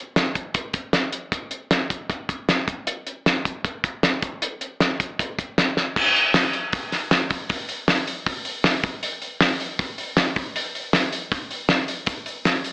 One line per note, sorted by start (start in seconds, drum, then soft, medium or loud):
0.16 snare loud
0.16 closed hi-hat medium
0.35 kick medium
0.35 closed hi-hat medium
0.54 kick medium
0.54 closed hi-hat medium
0.73 kick medium
0.73 closed hi-hat medium
0.93 snare medium
0.93 closed hi-hat medium
1.12 closed hi-hat medium
1.32 kick loud
1.32 closed hi-hat medium
1.51 closed hi-hat medium
1.71 snare loud
1.71 closed hi-hat medium
1.90 kick medium
1.90 closed hi-hat medium
2.10 kick loud
2.10 closed hi-hat medium
2.29 kick medium
2.29 closed hi-hat medium
2.49 snare medium
2.49 closed hi-hat medium
2.68 kick loud
2.68 closed hi-hat medium
2.87 closed hi-hat medium
3.07 closed hi-hat medium
3.26 snare loud
3.26 closed hi-hat medium
3.45 kick medium
3.45 closed hi-hat medium
3.65 kick medium
3.65 closed hi-hat medium
3.84 kick medium
3.84 closed hi-hat medium
4.03 snare loud
4.03 closed hi-hat medium
4.22 kick loud
4.22 closed hi-hat medium
4.42 closed hi-hat medium
4.61 closed hi-hat medium
4.80 snare loud
4.80 closed hi-hat medium
5.00 kick medium
5.00 closed hi-hat medium
5.19 kick medium
5.19 closed hi-hat medium
5.39 kick medium
5.39 closed hi-hat medium
5.58 snare loud
5.58 closed hi-hat medium
5.77 snare medium
5.96 kick loud
5.96 crash loud
6.16 open hi-hat soft
6.34 snare loud
6.34 open hi-hat medium
6.53 open hi-hat soft
6.73 kick loud
6.73 open hi-hat medium
6.92 snare soft
6.92 open hi-hat medium
7.11 snare loud
7.11 open hi-hat medium
7.30 kick medium
7.30 open hi-hat medium
7.50 kick loud
7.50 open hi-hat medium
7.69 open hi-hat medium
7.88 snare loud
7.88 open hi-hat medium
8.07 open hi-hat medium
8.26 kick medium
8.26 open hi-hat medium
8.45 open hi-hat medium
8.64 snare loud
8.64 open hi-hat medium
8.83 kick loud
8.83 open hi-hat medium
9.03 open hi-hat medium
9.22 open hi-hat medium
9.41 snare loud
9.41 open hi-hat medium
9.60 open hi-hat medium
9.79 kick loud
9.79 open hi-hat medium
9.98 open hi-hat medium
10.17 snare loud
10.17 open hi-hat medium
10.36 kick loud
10.36 open hi-hat medium
10.56 open hi-hat medium
10.75 open hi-hat medium
10.93 snare loud
10.93 open hi-hat medium
11.12 open hi-hat medium
11.32 kick loud
11.32 open hi-hat medium
11.51 open hi-hat medium
11.69 snare loud
11.69 open hi-hat medium
11.88 open hi-hat medium
12.06 kick loud
12.06 open hi-hat medium
12.06 shaker medium
12.26 open hi-hat medium
12.26 shaker medium
12.45 snare loud
12.45 open hi-hat medium
12.45 shaker medium
12.64 open hi-hat medium
12.64 shaker medium